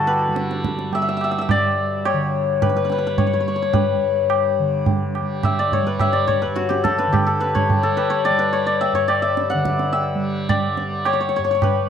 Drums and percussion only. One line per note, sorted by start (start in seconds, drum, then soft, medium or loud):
0.08 tabla na medium
0.36 tabla te medium
0.51 tabla te medium
0.65 tabla ke medium
0.79 tabla te medium
0.93 tabla tin medium
1.21 tabla na medium
1.49 tabla na medium
1.49 tabla ge medium
2.05 tabla na medium
2.62 tabla na medium
2.62 tabla ge medium
2.90 tabla te medium
3.18 tabla tin medium
3.18 tabla ge medium
3.74 tabla tin medium
3.74 tabla ge medium
4.30 tabla na medium
4.86 tabla tin medium
4.86 tabla ge medium
5.15 tabla na soft
5.43 tabla na medium
5.43 tabla ge medium
5.72 tabla ge soft
5.99 tabla na medium
5.99 tabla ge medium
6.28 tabla ge soft
6.56 tabla te medium
6.71 tabla te medium
6.85 tabla ke medium
6.99 tabla te medium
7.14 tabla na medium
7.14 tabla ge medium
7.41 tabla te medium
7.56 tabla ge soft
7.70 tabla tin medium
7.70 tabla ge medium
7.98 tabla na medium
8.26 tabla tin medium
8.81 tabla tin medium
9.09 tabla na medium
9.37 tabla te medium
9.52 tabla te medium
9.65 tabla ke medium
9.79 tabla te medium
9.93 tabla tin medium
10.49 tabla na medium
10.49 tabla ge medium
10.77 tabla te medium
11.05 tabla na medium
11.62 tabla na medium
11.62 tabla ge medium